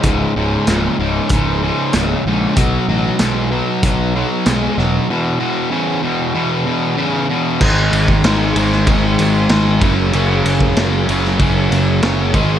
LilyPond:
<<
  \new Staff \with { instrumentName = "Overdriven electric guitar" } { \clef bass \time 4/4 \key fis \dorian \tempo 4 = 95 <cis, gis,>8 <cis, gis,>8 <cis, ais,>8 <cis, gis,>8 <cis, gis,>8 <cis, gis,>8 <cis, ais,>8 <cis, gis,>8 | <b, fis>8 <b, fis>8 <b, gis>8 <b, fis>8 <b, fis>8 <b, fis>8 <b, gis>8 <b, fis>8 | <e, b,>8 <e, b,>8 <e, cis>8 <e, b,>8 <e, b,>8 <e, b,>8 <e, cis>8 <e, b,>8 | <gis, dis gis>4 <gis, dis gis>8 <gis, dis gis>8 <gis, dis gis>4 <gis, dis gis>8 <fis, cis fis>8 |
<fis, cis fis>4 <fis, cis fis>8 <fis, cis fis>8 <fis, cis fis>4 <fis, cis fis>8 <gis, dis gis>8 | }
  \new Staff \with { instrumentName = "Picked electric bass" } { \clef bass \time 4/4 \key fis \dorian cis,,8 cis,,8 cis,,8 cis,,8 cis,,4 cis,,8 ais,,8 | b,,8 a,,8 b,,4 b,,4 b,,8 e,,8 | r1 | gis,,8 gis,,8 gis,,8 gis,,8 gis,,8 gis,,8 gis,,8 fis,,8 |
fis,,8 fis,,8 fis,,8 fis,,8 fis,,8 fis,,8 fis,,8 gis,,8 | }
  \new DrumStaff \with { instrumentName = "Drums" } \drummode { \time 4/4 <hh bd>4 <hh sn>4 <hh bd>4 <hh sn>4 | <hh bd>4 <hh sn>4 <hh bd>4 <hh sn>8 sn8 | r4 r4 r4 r4 | <cymc bd>8 cymr16 bd16 <cymr sn>8 cymr16 sn16 <bd cymr>8 <cymr sn>8 <cymr sn>8 <bd cymr>8 |
cymr8 cymr16 bd16 <cymr sn>8 cymr16 sn16 <bd cymr>8 <cymr sn>8 <cymr sn>8 <bd cymr>8 | }
>>